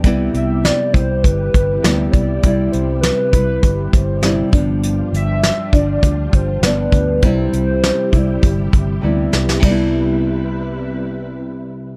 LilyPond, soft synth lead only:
\new Staff \with { instrumentName = "Soft synth lead" } { \time 4/4 \key c \major \tempo 4 = 100 r8 e''8 d''8 c''8 b'4. d''8~ | d''8 c''8 b'8 b'4 c''4 r8 | r8 e''4 d''4 c''8 b'4 | c''2. r4 |
r1 | }